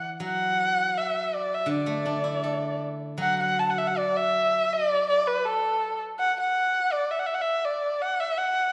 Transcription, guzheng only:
Already playing: E3
0.20 F#3
1.66 D3
1.86 A3
2.05 D4
2.24 E4
2.44 A4
3.18 F#3

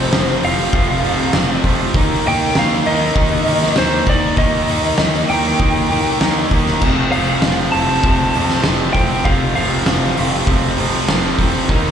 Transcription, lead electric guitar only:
Already playing: C5
0.45 F5
2.28 G5
2.59 F5
2.87 D#5
3.78 C5
4.09 D5
4.38 D#5
5.30 G5
7.12 F5
7.72 A5
8.93 G5
9.25 F5
9.55 F5

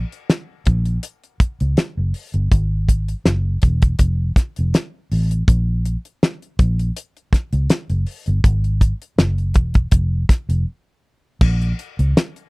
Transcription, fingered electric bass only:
0.66 A#1
1.40 muted fingered electric bass stroke
1.61 C#2
1.97 F#1
2.34 G1
2.52 G#1
3.26 F#1
3.63 E1
3.99 F1
4.59 F1
5.12 A1
5.48 A#1
6.59 A#1
7.33 muted fingered electric bass stroke
7.53 C#2
7.90 F#1
8.28 G1
8.44 G#1
9.18 F#1
9.55 E1
9.92 F1
10.30 muted fingered electric bass stroke
10.49 F1
11.41 A#1
11.99 C#2

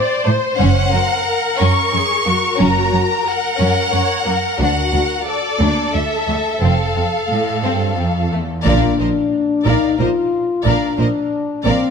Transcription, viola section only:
Already playing: D5
0.26 C5
0.60 C#4
0.93 A#4
1.95 G#4
2.28 F#4
3.26 A#4
3.94 C#5
4.25 A#4
4.58 F#4
4.91 F#4
5.26 A4
5.59 A#3
5.92 A4
6.60 A4
8.65 A#4
8.99 A#4
9.65 A#4
9.98 A#4
10.65 A#4
10.98 A#4
11.64 A#4

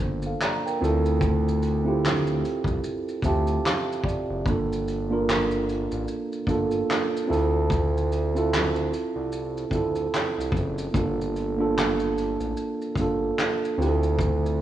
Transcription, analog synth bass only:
0.00 G1
0.81 D2
2.65 C2
3.23 D2
4.29 F#1
4.46 G1
5.92 A1
6.47 G1
7.30 D2
9.15 C2
9.71 D2
10.38 C2
10.52 F#1
10.94 G1
12.40 A1
12.95 G1
13.78 D2

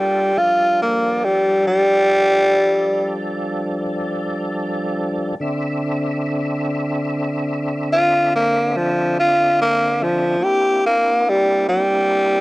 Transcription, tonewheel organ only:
Already playing: G3 D4 F4 A4
0.37 F3 G3 D4 A4
5.40 D3 C4 D4 E5
10.39 A#3 C4 D4 E4

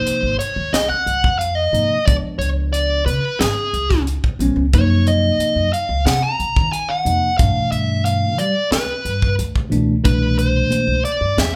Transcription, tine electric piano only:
Already playing: C3 F3 A#3 D#4
1.72 C3 F3 A#3 D#4
2.06 F3 G#3 B3 D4
4.40 F3 G#3 B3 C#4
4.73 C3 F3 A#3 D#4
7.05 C3 F3 A#3 D#4
7.38 B2 E3 A3 D4
9.70 B2 E3 A3 D4
10.03 B2 E3 A3 D4

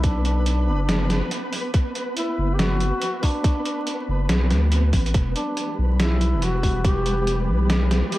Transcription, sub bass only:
Already playing: B1
0.67 F#1
2.38 F#1
4.08 F#1
4.29 B1
4.51 D2
4.93 A1
5.14 E1
5.78 B1
6.34 E1
7.48 B1

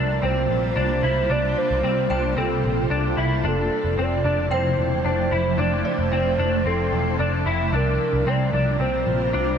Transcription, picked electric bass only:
Already playing: C2
0.23 C2
0.49 A#1
0.76 C2
1.03 C2
1.30 C2
1.70 C2
1.83 C2
2.10 C2
2.37 C2
2.64 A#1
2.90 C2
3.17 C2
3.44 F1
3.84 F1
3.97 F1
4.24 F1
4.51 F1
4.78 E1
5.04 F1
5.32 F1
5.58 F1
5.98 F1
6.12 F1
6.38 F1
6.65 F1
6.92 E1
7.19 F1
7.46 F1
7.73 C2
8.13 C2
8.26 C2
8.53 C2
8.79 C2
9.07 A#1
9.34 C2

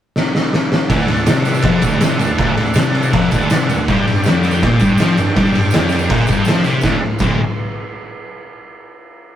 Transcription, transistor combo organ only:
0.88 A4 D5 F#5
3.88 G4 D5 G5
5.91 D5
6.11 F#5
6.30 G5
6.46 A5
6.66 B5
6.85 A4 D5 F#5

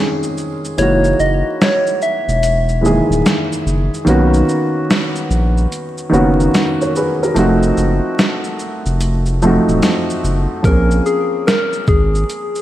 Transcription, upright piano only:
Already playing: D#3 G#3 C4 C#4 G#4
0.78 E3 G#3 A#3 D#4
0.82 F#4
2.81 D#3 E3 G#3 A#3
2.86 G#4
4.05 D#3 A#3 B3 C#4
4.09 F#4
6.09 D#3 A#3 B3 C#4
6.14 F#4
6.81 A#4 C#5
6.96 G#4 B4
7.23 F#4 A#4
7.34 F3 A3 C4 D#4
7.39 F#4
9.42 F3 A3 C4 D#4
9.47 F#4
10.63 F3 A#3 C4 C#4
10.67 G#4

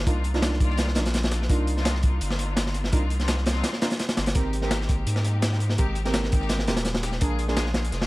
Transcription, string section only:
0.06 A#3 C4 D4 D#4 F4
0.34 A#3 C4 D4 D#4 F4
0.60 D#3 A#3 C4 F4 D5
0.95 A#3 C4 D4 D#4 F4
1.31 A#3 C4 D4 D#4 F4
1.49 A#3 C4 D4 D#4 F4
1.76 A#3 C4 D4 D#4 F4
2.02 A#3 C4 D4 D#4 F4
2.92 A#3 C4 D4 D#4 F4
3.19 A#3 C4 D4 D#4 F4
3.45 A#3 C4 D4 D#4 F4
3.81 A#3 C4 D4 D#4 F4
4.17 A#3 C4 D4 D#4 F4
4.35 G#3 A#3 C4 D#4 G4
4.63 G#3 A#3 C4 D#4 G4
4.89 G#3 A#3 C4 D#4 G4
5.78 G#3 A#3 C4 D#4 G4
6.05 G#3 A#3 C4 D#4 G4
6.31 G#3 A#3 C4 D#4 G4
6.67 G#3 A#3 C4 D#4 G4
7.03 G#3 A#3 C4 D#4 G4
7.21 G#3 A#3 D4 F4 G#4
7.48 G#3 A#3 D4 F4 G#4
7.74 G#3 A#3 D4 F4 G#4

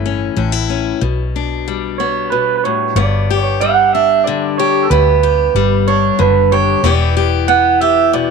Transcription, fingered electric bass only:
Already playing: G1
0.37 A1
1.02 B1
2.95 G1
4.90 D2
5.55 G1
6.19 F#1
6.83 E1

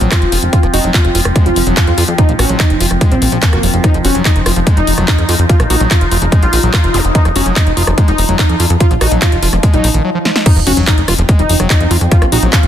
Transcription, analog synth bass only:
0.01 A#1
0.22 F1
0.32 F1
0.43 F1
0.63 F1
0.74 F1
0.84 F1
1.05 F1
1.15 F1
1.25 F1
1.46 F1
1.56 F1
1.67 F1
1.87 F2
1.98 F2
2.08 F2
2.29 A#1
2.39 A#1
2.49 A#1
2.70 F1
2.81 F1
2.91 F1
3.12 A#1
3.22 A#1
3.32 A#1
3.53 F1
3.63 F1
3.74 F1
3.94 F1
4.05 F1
4.15 F1
4.36 F1
4.46 F1
4.56 F1
4.77 F1
4.87 F1
4.98 F1
5.18 F2
5.29 F2
5.39 F2
5.60 A#1
5.70 A#1
5.80 A#1
6.01 F1
6.12 F1
6.22 F1
6.43 A#1
6.53 A#1
6.63 A#1
6.84 F1
6.94 F1
7.05 F1
7.25 F1
7.36 F1
7.46 F1
7.67 F1
7.77 F1
7.87 F1
8.08 F1
8.18 F1
8.29 F1
8.49 F2
8.60 F2
8.70 F2
8.91 A#1
9.01 A#1
9.12 A#1
9.32 F1
9.43 F1
9.53 F1
9.74 A#1
9.84 A#1
9.94 A#1
10.56 F1
10.67 F1
10.77 F1
10.98 F1
11.08 F1
11.18 F1
11.39 F1
11.49 F1
11.60 F1
11.80 F2
11.91 F2
12.01 F2
12.22 A#1
12.32 A#1
12.43 A#1
12.63 F1

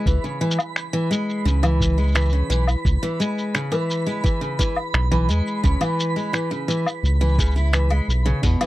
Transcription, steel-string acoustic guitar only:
0.07 E3
0.24 C#3
0.41 E3
0.93 E3
1.11 G#3
1.45 C#3
1.63 E3
1.98 G#3
2.15 E3
2.33 C#3
2.50 E3
3.03 E3
3.20 G#3
3.54 C#3
3.72 E3
4.06 G#3
4.24 E3
4.41 C#3
4.59 E3
5.12 E3
5.29 G#3
5.64 C#3
5.81 E3
6.16 G#3
6.33 E3
6.51 C#3
6.68 E3
7.21 E3
7.39 C#3
7.56 E4
7.73 E3
7.90 G#3
8.26 C#3
8.43 B2
8.61 E3

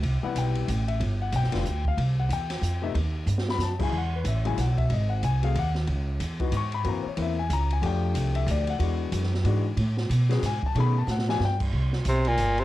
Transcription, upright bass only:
0.03 C2
0.23 muted upright bass stroke
0.35 B1
0.68 A1
1.00 G1
1.32 B1
1.44 G1
1.54 F1
1.65 D2
1.97 C2
2.29 E2
2.62 F2
2.94 D#2
3.26 G2
3.58 F#2
3.92 E2
4.24 A1
4.57 B1
4.90 G#1
5.23 C2
5.55 D#2
5.87 C#2
6.20 E2
6.52 G#2
6.84 F#2
7.05 muted upright bass stroke
7.17 E2
7.50 C#2
7.82 F2
8.14 C2
8.46 D2
8.79 E2
9.12 F#2
9.44 G#2
9.77 A2
10.10 B2
10.42 G#2
10.62 muted upright bass stroke
10.75 B2
11.07 A2
11.40 G2
11.72 C2
12.05 B1
12.38 G1

